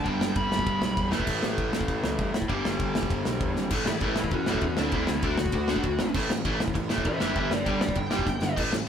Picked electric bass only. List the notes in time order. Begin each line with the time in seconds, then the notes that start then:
0.06 G1
0.21 G1
0.36 G1
0.51 G1
0.66 G1
0.81 B1
0.97 E2
1.13 A1
1.28 A1
1.43 A1
1.58 A1
1.73 A1
1.88 A1
2.03 C#2
2.19 G2
2.34 A2
2.49 G1
2.66 G1
2.80 G1
2.96 G1
3.10 G1
3.26 B1
3.41 E2
3.57 G#1
3.71 A1
3.87 A1
4.01 A1
4.18 A1
4.32 A1
4.48 A1
4.62 E2
4.79 D2
4.92 D2
5.09 D2
5.23 D2
5.40 D2
5.53 D2
5.84 D2
5.99 G#1
6.15 A1
6.30 A1
6.45 A1
6.60 A1
6.75 A1
6.90 A1
7.06 A1
7.21 G1
7.36 G1
7.51 G1
7.67 G1
7.81 G1
7.96 G1
8.27 G1
8.42 G1
8.57 A1
8.72 A1